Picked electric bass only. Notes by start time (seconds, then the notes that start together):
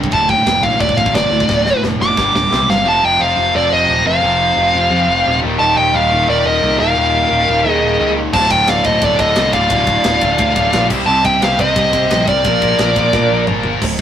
0.12 D1
0.46 F1
0.63 A1
0.80 D1
0.98 A1
1.14 G1
1.31 D2
1.49 D1
1.83 F1
2.01 F#1
2.18 G1
2.35 D1
2.52 C2
2.69 G1
2.87 F1
3.04 F1
3.20 F1
3.37 F1
3.55 F1
3.72 F1
3.89 D#1
4.05 F1
4.22 F1
4.57 F1
4.74 F1
4.90 F2
5.08 F1
5.26 D#1
5.44 D#1
5.60 D#1
5.77 D#1
5.94 D#1
6.11 D#1
6.28 D#1
6.45 D#1
6.62 C2
6.80 D#1
6.96 D#1
7.31 D#1
7.48 D#1
7.65 D#2
7.82 D#1
8.00 C#2
8.33 D1
8.51 D1
8.68 D1
8.85 D1
9.02 D1
9.19 D1
9.37 C2
9.54 D1
9.70 D1
10.06 D1
10.22 D1
10.39 D2
10.56 D1
10.74 A#1
10.90 C2
11.08 C2
11.25 C2
11.42 C2
11.59 C2
11.76 C2
11.93 C2
12.10 A#1
12.28 C2
12.45 A#1
12.80 A#1
12.96 A#1
13.13 A#2
13.30 A#1
13.48 G1
13.82 D1